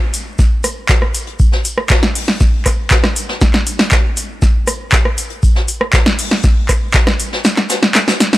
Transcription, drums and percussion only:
0.14 open hi-hat loud
0.14 shaker medium
0.39 kick loud
0.39 snare soft
0.39 shaker medium
0.64 cross-stick medium
0.64 open hi-hat loud
0.64 shaker medium
0.89 kick loud
0.89 snare loud
0.89 clap loud
0.89 shaker medium
1.02 cross-stick medium
1.15 open hi-hat loud
1.15 shaker medium
1.27 closed hi-hat soft
1.40 kick loud
1.40 shaker medium
1.52 snare soft
1.65 open hi-hat loud
1.65 shaker medium
1.78 cross-stick medium
1.89 kick loud
1.89 snare loud
1.89 clap loud
1.89 shaker medium
2.03 snare medium
2.15 open hi-hat medium
2.15 open hi-hat loud
2.28 snare medium
2.41 kick loud
2.41 snare soft
2.41 shaker medium
2.65 kick medium
2.65 cross-stick medium
2.65 clap soft
2.65 open hi-hat loud
2.65 shaker medium
2.91 kick loud
2.91 snare loud
2.91 clap loud
2.91 shaker medium
3.04 cross-stick medium
3.04 snare medium
3.16 open hi-hat loud
3.16 shaker medium
3.29 snare medium
3.41 kick loud
3.41 snare medium
3.41 shaker medium
3.54 snare medium
3.54 clap soft
3.67 open hi-hat loud
3.67 shaker medium
3.79 snare medium
3.79 closed hi-hat soft
3.91 kick loud
3.91 snare loud
3.91 clap loud
3.91 shaker medium
4.17 open hi-hat loud
4.17 shaker medium
4.42 kick loud
4.42 snare soft
4.42 shaker medium
4.67 cross-stick medium
4.67 open hi-hat loud
4.67 shaker medium
4.92 kick loud
4.92 snare loud
4.92 clap loud
4.92 shaker medium
5.05 cross-stick medium
5.18 open hi-hat loud
5.18 shaker medium
5.30 closed hi-hat soft
5.43 kick loud
5.43 shaker loud
5.56 snare medium
5.68 open hi-hat loud
5.68 shaker medium
5.81 cross-stick medium
5.93 kick loud
5.93 snare loud
5.93 clap loud
5.93 shaker loud
6.06 snare medium
6.19 open hi-hat loud
6.19 open hi-hat medium
6.31 snare medium
6.44 kick loud
6.44 snare soft
6.44 shaker medium
6.69 kick medium
6.69 cross-stick medium
6.69 clap soft
6.69 open hi-hat loud
6.69 shaker medium
6.94 kick loud
6.94 snare loud
6.94 clap loud
6.94 shaker medium
7.07 cross-stick medium
7.07 snare medium
7.20 open hi-hat loud
7.20 shaker medium
7.33 snare medium
7.45 snare medium
7.45 shaker loud
7.57 snare medium
7.57 clap soft
7.70 snare loud
7.70 open hi-hat loud
7.70 shaker medium
7.83 snare medium
7.95 snare medium
7.95 clap loud
7.95 shaker medium
8.08 snare medium
8.08 snare loud
8.08 shaker medium
8.20 snare medium
8.20 open hi-hat loud
8.33 snare medium
8.33 shaker medium

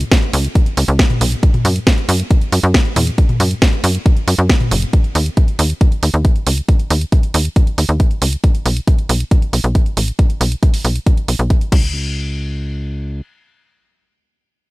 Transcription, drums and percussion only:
0.01 closed hi-hat medium
0.12 kick loud
0.12 snare loud
0.12 closed hi-hat medium
0.23 closed hi-hat soft
0.33 open hi-hat loud
0.44 closed hi-hat soft
0.55 kick loud
0.55 closed hi-hat medium
0.66 closed hi-hat soft
0.77 open hi-hat loud
0.88 closed hi-hat soft
0.99 kick loud
0.99 snare loud
0.99 closed hi-hat medium
1.10 closed hi-hat soft
1.10 mid tom medium
1.21 open hi-hat loud
1.32 closed hi-hat soft
1.43 kick loud
1.43 closed hi-hat soft
1.54 closed hi-hat soft
1.54 mid tom medium
1.65 open hi-hat loud
1.76 closed hi-hat soft
1.87 kick loud
1.87 snare loud
1.87 closed hi-hat soft
1.98 closed hi-hat soft
2.09 open hi-hat loud
2.20 closed hi-hat soft
2.31 kick loud
2.31 closed hi-hat medium
2.41 closed hi-hat soft
2.52 open hi-hat loud
2.63 closed hi-hat soft
2.74 kick loud
2.74 snare loud
2.74 closed hi-hat soft
2.85 closed hi-hat soft
2.96 open hi-hat loud
2.96 mid tom medium
3.07 closed hi-hat medium
3.18 kick loud
3.18 closed hi-hat soft
3.29 closed hi-hat soft
3.29 mid tom medium
3.40 open hi-hat loud
3.51 closed hi-hat soft
3.62 kick loud
3.62 snare loud
3.62 closed hi-hat soft
3.73 closed hi-hat soft
3.84 open hi-hat loud
3.95 closed hi-hat soft
4.06 kick loud
4.06 closed hi-hat soft
4.17 closed hi-hat soft
4.28 open hi-hat loud
4.39 closed hi-hat soft
4.49 kick loud
4.49 snare loud
4.49 closed hi-hat soft
4.60 closed hi-hat soft
4.60 mid tom medium
4.71 open hi-hat loud
4.82 closed hi-hat soft
4.93 kick loud
4.93 closed hi-hat soft
5.04 closed hi-hat soft
5.15 open hi-hat loud
5.26 closed hi-hat soft
5.37 kick loud
5.37 closed hi-hat soft
5.48 closed hi-hat soft
5.59 open hi-hat loud
5.70 closed hi-hat soft
5.81 kick loud
5.81 closed hi-hat soft
5.92 closed hi-hat soft
6.03 open hi-hat loud
6.14 closed hi-hat soft
6.25 kick loud
6.25 closed hi-hat soft
6.36 closed hi-hat soft
6.47 open hi-hat loud
6.58 closed hi-hat soft
6.69 kick loud
6.69 closed hi-hat soft
6.80 closed hi-hat soft
6.90 open hi-hat loud
7.01 closed hi-hat soft
7.12 kick loud
7.12 closed hi-hat soft
7.23 closed hi-hat soft
7.34 open hi-hat loud
7.45 closed hi-hat soft
7.56 kick loud
7.56 closed hi-hat medium
7.67 closed hi-hat soft
7.78 open hi-hat loud
7.89 closed hi-hat soft
8.00 kick loud
8.00 closed hi-hat soft
8.11 closed hi-hat soft
8.22 open hi-hat loud
8.33 closed hi-hat soft
8.44 kick loud
8.44 closed hi-hat soft
8.55 closed hi-hat soft
8.66 open hi-hat medium
8.77 closed hi-hat medium
8.87 kick loud
8.87 closed hi-hat medium
8.98 closed hi-hat soft
9.09 open hi-hat medium
9.20 closed hi-hat soft
9.31 kick loud
9.31 closed hi-hat medium
9.42 closed hi-hat soft
9.53 open hi-hat medium
9.64 closed hi-hat soft
9.75 kick loud
9.75 closed hi-hat soft
9.86 closed hi-hat soft
9.97 open hi-hat medium
10.08 closed hi-hat soft
10.19 kick loud
10.19 closed hi-hat medium
10.30 closed hi-hat soft
10.41 open hi-hat medium
10.52 closed hi-hat soft
10.63 kick loud
10.63 closed hi-hat soft
10.74 open hi-hat medium
10.85 open hi-hat medium
10.96 closed hi-hat soft
11.06 kick loud
11.06 closed hi-hat medium
11.17 closed hi-hat soft
11.28 open hi-hat medium
11.39 closed hi-hat soft
11.50 kick loud
11.50 closed hi-hat soft
11.61 closed hi-hat soft
11.72 kick loud
11.72 crash medium

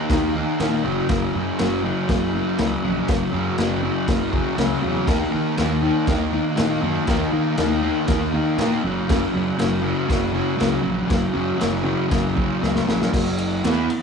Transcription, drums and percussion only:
0.10 kick loud
0.10 snare loud
0.10 crash medium
0.60 snare loud
0.60 crash medium
1.09 kick loud
1.09 snare loud
1.09 crash medium
1.59 snare loud
1.59 crash medium
2.09 kick loud
2.09 snare loud
2.09 crash medium
2.58 snare loud
2.58 crash medium
3.08 kick loud
3.08 snare loud
3.08 crash medium
3.58 snare loud
3.58 crash medium
4.08 kick loud
4.08 snare loud
4.08 crash medium
4.33 kick medium
4.58 snare loud
4.58 crash medium
5.08 kick loud
5.08 snare loud
5.08 crash medium
5.58 snare loud
5.58 crash medium
6.07 kick loud
6.07 snare loud
6.07 crash medium
6.57 snare loud
6.57 crash medium
7.07 kick loud
7.07 snare loud
7.07 crash medium
7.57 snare loud
7.57 crash medium
8.08 kick loud
8.08 snare loud
8.08 crash medium
8.58 snare loud
8.58 crash medium
9.09 kick loud
9.09 snare loud
9.09 crash medium
9.59 snare loud
9.59 crash medium
10.10 kick loud
10.10 snare loud
10.10 crash medium
10.60 snare loud
10.60 crash medium
11.10 kick loud
11.10 snare loud
11.10 crash medium
11.61 snare loud
11.61 crash medium
12.11 kick loud
12.11 snare loud
12.11 crash medium
12.37 kick medium
12.63 snare medium
12.76 snare medium
12.89 snare loud
13.02 snare loud
13.13 kick loud
13.13 snare loud
13.13 crash loud
13.38 ride medium
13.64 snare loud
13.64 ride loud
13.90 ride medium

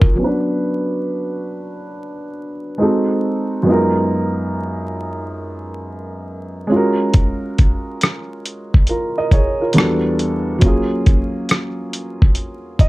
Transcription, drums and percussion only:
0.01 kick medium
7.14 kick loud
7.14 closed hi-hat medium
7.58 kick medium
7.58 closed hi-hat medium
8.01 cross-stick loud
8.01 closed hi-hat medium
8.46 closed hi-hat medium
8.74 kick medium
8.87 closed hi-hat medium
9.31 kick medium
9.31 closed hi-hat medium
9.73 closed hi-hat medium
9.78 cross-stick loud
10.19 closed hi-hat medium
10.61 kick loud
10.61 closed hi-hat medium
11.06 kick medium
11.06 closed hi-hat medium
11.49 cross-stick medium
11.49 closed hi-hat medium
11.93 closed hi-hat medium
12.22 kick medium
12.35 closed hi-hat medium
12.79 kick medium
12.79 closed hi-hat medium

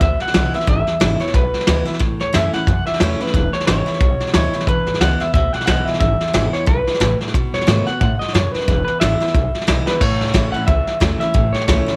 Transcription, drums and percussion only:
0.01 kick loud
0.01 snare soft
0.20 snare soft
0.27 snare soft
0.34 snare loud
0.34 hi-hat pedal medium
0.54 snare soft
0.61 snare soft
0.67 kick loud
0.67 snare soft
0.87 snare soft
1.01 snare loud
1.01 hi-hat pedal medium
1.20 snare soft
1.27 snare soft
1.34 kick loud
1.34 snare soft
1.54 snare soft
1.60 snare soft
1.67 snare loud
1.67 hi-hat pedal medium
1.86 snare soft
1.94 snare soft
2.00 kick loud
2.00 snare soft
2.20 snare soft
2.34 snare loud
2.34 hi-hat pedal medium
2.53 snare soft
2.67 kick loud
2.67 snare soft
2.86 snare soft
2.94 snare soft
3.00 snare loud
3.00 hi-hat pedal medium
3.20 snare soft
3.27 snare soft
3.34 kick loud
3.34 snare soft
3.53 snare soft
3.60 snare soft
3.67 snare loud
3.67 hi-hat pedal medium
3.87 snare soft
3.94 snare soft
4.01 kick loud
4.01 snare soft
4.20 snare soft
4.27 snare soft
4.34 snare loud
4.34 hi-hat pedal medium
4.53 snare soft
4.60 snare soft
4.67 kick loud
4.67 snare soft
4.87 snare soft
4.94 snare soft
5.01 snare loud
5.01 hi-hat pedal medium
5.20 snare soft
5.34 kick loud
5.34 snare soft
5.53 snare soft
5.61 snare soft
5.67 snare loud
5.67 hi-hat pedal medium
5.87 snare soft
5.94 snare soft
6.01 kick loud
6.01 snare soft
6.21 snare soft
6.28 snare soft
6.34 snare loud
6.34 hi-hat pedal medium
6.54 snare soft
6.67 kick loud
6.67 snare soft
6.87 snare soft
6.94 snare soft
7.01 snare loud
7.01 hi-hat pedal medium
7.21 snare soft
7.27 snare soft
7.34 kick loud
7.34 snare soft
7.54 snare soft
7.61 snare soft
7.68 snare loud
7.68 hi-hat pedal medium
7.87 snare soft
8.01 kick loud
8.01 snare soft
8.21 snare soft
8.28 snare soft
8.35 snare loud
8.35 hi-hat pedal medium
8.54 snare soft
8.61 snare soft
8.68 kick loud
8.68 snare soft
8.88 snare soft
9.01 snare loud
9.01 hi-hat pedal medium
9.21 snare soft
9.28 snare soft
9.35 kick loud
9.35 snare soft
9.55 snare soft
9.61 snare soft
9.68 snare loud
9.68 hi-hat pedal medium
9.87 snare medium
10.01 kick loud
10.01 snare soft
10.01 crash loud
10.21 snare soft
10.28 snare soft
10.34 kick medium
10.34 snare loud
10.34 hi-hat pedal medium
10.54 snare soft
10.68 kick loud
10.68 snare soft
10.87 snare soft
11.01 kick medium
11.01 snare loud
11.01 hi-hat pedal medium
11.21 snare soft
11.35 kick loud
11.35 snare soft
11.54 snare soft
11.61 snare soft
11.68 kick medium
11.68 snare loud
11.68 hi-hat pedal medium
11.88 snare soft

